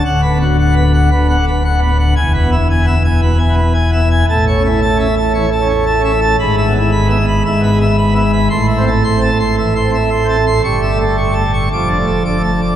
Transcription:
<<
  \new Staff \with { instrumentName = "Pipe organ" } { \time 4/4 \key a \major \tempo 4 = 113 << { fis''8 r2. r8 | gis''8 r2. r8 | a''8 r2. r8 | \key a \minor b''8 r2. r8 |
c'''8 r2. r8 | cis'''8 r4. d'''8 r4. | } \\ { \tuplet 3/2 { r8 b'8 fis'8 fis''8 b'8 fis''8 b'8 fis''8 b'8 fis''8 b'8 fis''8 } | \tuplet 3/2 { r8 b'8 e'8 gis''8 e''8 gis''8 b'8 gis''8 b'8 gis''8 e''8 gis''8 } | \tuplet 3/2 { r8 cis''8 e'8 a''8 e''8 a''8 cis''8 a''8 cis''8 a''8 e''8 a''8 } | \tuplet 3/2 { r8 e''8 e'8 b''8 e''8 b''8 e''8 b''8 e''8 b''8 e''8 b''8 } |
\tuplet 3/2 { r8 e''8 a'8 c'''8 a''8 c'''8 e''8 c'''8 e''8 c'''8 a''8 c'''8 } | \tuplet 3/2 { r8 e''8 a'8 cis'''8 a''8 cis'''8 r8 d''8 a'8 d'''8 a''8 d'''8 } | } >> }
  \new Staff \with { instrumentName = "Pipe organ" } { \time 4/4 \key a \major << { d,8 b16 r8 b16 r8 d,16 b16 d16 r8 b16 r8 | e,8 b16 r8 b16 r8 b,16 r16 b16 r8 b16 r8 | a,8 cis'16 r8 cis'16 r8 e16 r16 cis'16 r8 cis'16 r8 | \key a \minor gis,8 b16 r8 b16 r8 gis,16 b16 gis16 r8 b16 r8 |
a,8 c'16 r8 c'16 r8 e16 r16 c'16 r8 c'16 r8 | g,8 a16 r8 a16 r8 f,16 d'16 a16 r16 d'16 a16 r16 d'16 | } \\ { d,,2 d,,2 | e,,1 | a,,1 | gis,,2 gis,,2 |
a,,1 | g,,2 f,,2 | } >> }
>>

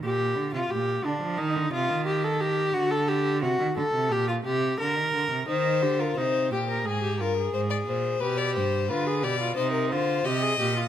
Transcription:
<<
  \new Staff \with { instrumentName = "Violin" } { \time 4/4 \key g \phrygian \tempo 4 = 88 r1 | r1 | c''8. bes'16 c''8 g'8 aes'8 bes'8 c''16 d''16 c''8 | b'16 d''16 c''8 b'8 d''8 c''16 bes'16 c''8 ees''4 | }
  \new Staff \with { instrumentName = "Viola" } { \time 4/4 \key g \phrygian g'8. f'16 g'8 d'8 ees'8 f'8 g'16 a'16 g'8 | fis'16 a'16 g'8 fis'8 a'8 g'16 f'16 g'8 bes'4 | ees'8 g'16 f'16 ees'8 g'16 bes'16 aes'16 g'16 f'16 aes'4~ aes'16 | g'4 f'16 aes'16 g'16 f'16 ees'8 f'8 g'16 aes'16 g'16 f'16 | }
  \new Staff \with { instrumentName = "Cello" } { \clef bass \time 4/4 \key g \phrygian bes,8 d16 c16 bes,8 d16 f16 ees16 d16 c16 ees4~ ees16 | d4 c16 ees16 d16 c16 bes,8 c8 d16 ees16 d16 c16 | ees8 d8 c8 bes,8 aes,8 g,8 aes,8 bes,8 | b,8 g,8 d8 b,8 c8 d8 c8 bes,8 | }
>>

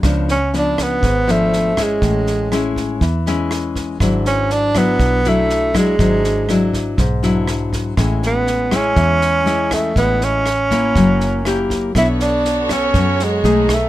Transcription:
<<
  \new Staff \with { instrumentName = "Violin section" } { \time 4/4 \key a \major \tempo 4 = 121 << { r1 | r1 | r1 | r1 |
r1 | r1 | cis''1 | } \\ { r1 | r1 | r1 | r1 |
r1 | r1 | <b fis' a'>2. <b dis' gis'>4 | } >> }
  \new Staff \with { instrumentName = "Nylon-string guitar" } { \time 4/4 \key a \major << { <eis b d'>8 r8 <eis b d'>4 r8 <eis b d'>4 <gis cis' e'>8~ | <gis cis' e'>4 <gis cis' e'>4 r8 <gis cis' e'>4. | <fis d' e'>4. <fis d' e'>4 <fis d' e'>4 <fis d' e'>8 | <fis d' e'>4 <fis d' e'>4 r8 <fis d' e'>4. |
<gis cis' e'>4. <gis cis' e'>4. <gis cis' e'>4 | <gis cis' e'>4 r8 <bes e'>4. <ais e' g'>4 | <d' a' cis''>4. <a' cis''>4. <a dis' gis'>8 r8 | } \\ { cis2 gis,2 | a,2 e2 | gis,2 r2 | gis,2 gis,2 |
a,2 e2 | a,2 fis2 | b2 fis4 r4 | } >> }
  \new Staff \with { instrumentName = "Tenor saxophone" } { \time 4/4 \key a \major r8 cis'8 d'8 b4 a4 gis8~ | gis4. r2 r8 | r8 cis'8 d'8 b4 a4 gis8~ | gis4. r2 r8 |
r8 b4 cis'2 a8 | b8 cis'2. r8 | e'8 d'4 cis'4 gis4 a8 | }
  \new Staff \with { instrumentName = "Fingered electric bass" } { \clef bass \time 4/4 \key a \major cis,2 gis,,2 | a,,2 e,2 | gis,,2 b,,2 | gis,,2 b,,2 |
a,,2 e,2 | a,,2 fis,,2 | b,,2 fis,4 b,,4 | }
  \new DrumStaff \with { instrumentName = "Drums" } \drummode { \time 4/4 <bd ss sn>8 sn8 sn8 <bd ss sn>8 <bd sn>8 sn8 sn8 <bd ss sn>8 | <bd sn>8 sn8 <ss sn>8 <bd sn>8 <bd sn>8 sn8 <ss sn>8 <bd sn>8 | <bd ss sn>8 sn8 sn8 <bd ss sn>8 <bd sn>8 sn8 sn8 <bd ss sn>8 | <bd sn>8 sn8 <ss sn>8 <bd sn>8 <bd sn>8 sn8 <ss sn>8 <bd sn>8 |
<bd ss sn>8 sn8 sn8 <bd ss sn>8 <bd sn>8 sn8 sn8 <bd ss sn>8 | <bd sn>8 sn8 <ss sn>8 <bd sn>8 <bd sn>8 sn8 <ss sn>8 <bd sn>8 | <bd ss sn>8 sn8 sn8 <bd ss sn>8 <bd sn>8 sn8 sn8 <bd ss sn>8 | }
>>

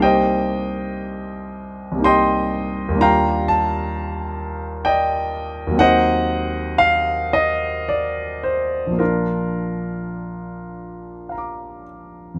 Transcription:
<<
  \new Staff \with { instrumentName = "Grand piano" } { \time 3/4 \key ees \lydian \tempo 4 = 58 << { r2. | r2. | r2. | r2 <f'' bes'' d'''>4 | } \\ { <c'' ees'' g''>2 <ees'' g'' c'''>4 | <f'' g'' bes''>8 a''4. <d'' ees'' g''>8 r8 | <c'' ees'' ges''>4 f''8 ees''8 d''8 c''8 | <d' f' bes'>2~ <d' f' bes'>8 r8 | } >> }
  \new Staff \with { instrumentName = "Grand piano" } { \time 3/4 \key ees \lydian <c, g bes ees' g'>2 <c, g bes ees' g'>4 | <ees, g bes d' f'>2. | <ees, ges bes c' ees'>2. | <bes,, f bes>2. | }
>>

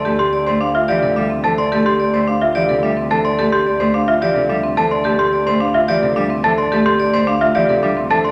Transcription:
<<
  \new Staff \with { instrumentName = "Celesta" } { \time 3/4 \key d \minor \tempo 4 = 108 r16 c'''16 r16 c'''16 r16 e''16 f''16 r8. a''16 c'''16 | r16 c'''16 r16 c'''16 r16 e''16 f''16 r8. a''16 c'''16 | r16 c'''16 r16 c'''16 r16 e''16 f''16 r8. a''16 c'''16 | r16 c'''16 r16 c'''16 r16 e''16 f''16 r8. a''16 c'''16 |
r16 c'''16 r16 c'''16 r16 e''16 f''16 r8. a''16 c'''16 | }
  \new Staff \with { instrumentName = "Vibraphone" } { \time 3/4 \key d \minor a'16 r16 d''16 c''16 f''16 r16 d''16 a'16 e''16 r16 c''16 d''16 | a'16 r16 d''16 c''16 f''16 r16 d''16 a'16 e''16 r16 c''16 d''16 | a'16 r16 d''16 c''16 f''16 r16 d''16 a'16 e''16 r16 c''16 d''16 | a'16 r16 d''16 c''16 f''16 r16 d''16 a'16 e''16 r16 c''16 d''16 |
a'16 r16 d''16 c''16 f''16 r16 d''16 a'16 e''16 r16 c''16 d''16 | }
  \new Staff \with { instrumentName = "Marimba" } { \time 3/4 \key d \minor g'16 g'16 r8 d'16 f'16 g'16 r16 d'16 c'16 a'16 r16 | g'16 g'16 r8 d'16 f'16 g'16 r16 d'16 c'16 a'16 r16 | g'16 g'16 r8 d'16 f'16 g'16 r16 d'16 c'16 a'16 r16 | g'16 g'16 r8 d'16 f'16 g'16 r16 d'16 c'16 a'16 r16 |
g'16 g'16 r8 d'16 f'16 g'16 r16 d'16 c'16 a'16 r16 | }
  \new Staff \with { instrumentName = "Cello" } { \clef bass \time 3/4 \key d \minor a16 r8 a16 r8 e16 c16 g16 r16 e16 r16 | a16 r8 a16 r8 e16 c16 g16 r16 e16 r16 | a16 r8 a16 r8 e16 c16 g16 r16 e16 r16 | a16 r8 a16 r8 e16 c16 g16 r16 e16 r16 |
a16 r8 a16 r8 e16 c16 g16 r16 e16 r16 | }
  \new Staff \with { instrumentName = "Double bass" } { \clef bass \time 3/4 \key d \minor d,2.~ | d,2.~ | d,2.~ | d,2.~ |
d,2. | }
>>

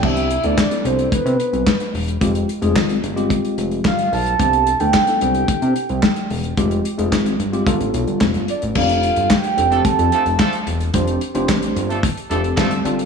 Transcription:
<<
  \new Staff \with { instrumentName = "Soft synth lead" } { \time 4/4 \key f \lydian \tempo 4 = 110 e''8. d''8. c''8 b'4. r8 | r2. f''8 a''8~ | a''8. g''8. g''2 r8 | r2. r8 d''8 |
f''4 g''4 a''4. r8 | r1 | }
  \new Staff \with { instrumentName = "Tine electric piano" } { \time 4/4 \key f \lydian << { d''16 r2. r8. | r1 | r1 | r1 |
r1 | r1 | } \\ { <b d' e' g'>8 r16 <b d' e' a'>16 r16 <b d' e' a'>4~ <b d' e' a'>16 r4. | <aes c' f' g'>8 r16 <aes c' f' aes'>8. r16 <aes c' f' g'>4~ <aes c' f' g'>16 r4 | <b d' e' g'>8 r16 <b d' e' a'>16 r16 <b d' e' a'>4~ <b d' e' a'>16 r4. | <aes c' f' g'>8 r16 <aes c' f' aes'>8. r16 <aes c' f' g'>16 <b d' f' a'>4. r8 |
<c' d' g' a'>4 r8 <c' d' g' a'>16 <c' d' g' a'>4~ <c' d' g' a'>16 r4 | <c' d' g' c''>8 r16 <c' d' g' c''>4 r8. <c' d' g' a'>4 <c' d' f' a'>8 | } >> }
  \new Staff \with { instrumentName = "Horn section" } { \time 4/4 \key f \lydian r1 | r1 | r1 | r1 |
r4. r16 <f a d' a'>16 r8 <f a d' a'>16 r16 <f a d' a'>8 r8 | r4. r16 <f a d' a'>16 r8 <f a d' a'>16 r16 <f a d' a'>8 r8 | }
  \new Staff \with { instrumentName = "Analog synth bass" } { \clef bass \time 4/4 \key f \lydian c,8. d,16 r8 c,8 c16 c16 r16 c,16 r8 e,,8 | f,,8 r16 f,,16 aes,,8 g,,8. r16 f,,8 g,,8 b,,8 | c,8. d,16 r8 c,8 r16 c16 r16 c,16 r8 e,,8 | f,,8 r16 f,,16 aes,,8 g,,8 g,,16 a,,16 b,,16 g,,16 f,,16 g,,16 r16 a,,16 |
f,,8. g,,16 r8 f,,8 f,16 f,16 r16 f,,16 r8 e,,8 | f,,8 r16 f,,16 a,,8 g,,8. r16 f,,8 g,,8 g,,8 | }
  \new DrumStaff \with { instrumentName = "Drums" } \drummode { \time 4/4 <cymc bd>16 hh16 hh16 hh16 <hc bd sn>16 hh16 hh16 hh16 <hh bd>16 hh16 hh16 hh16 <hc bd sn>16 hh16 hho16 hh16 | <hh bd>16 hh16 hh16 hh16 <hc bd sn>16 hh16 hh16 hh16 <hh bd>16 hh16 hh16 hh16 <hc bd sn>16 hh16 hho16 hh16 | <hh bd>16 hh16 hh16 hh16 <hc bd sn>16 hh16 hh16 hh16 <hh bd>16 hh16 hh16 hh16 <hc bd sn>16 hh16 hho16 hh16 | <hh bd>16 hh16 hh16 hh16 <hc bd sn>16 hh16 hh16 hh16 <hh bd>16 hh16 hh16 hh16 <hc bd sn>16 hh16 hh16 hh16 |
<cymc bd>16 hh16 hh16 hh16 <hc bd sn>16 hh16 hh16 hh16 <hh bd>16 hh16 hh16 hh16 <hc bd sn>16 hh16 hh16 hh16 | <hh bd>16 hh16 hh16 hh16 <hc bd sn>16 hh16 hh16 hh16 <hh bd>16 hh16 hh16 hh16 <hc bd sn>16 hh16 hh16 hh16 | }
>>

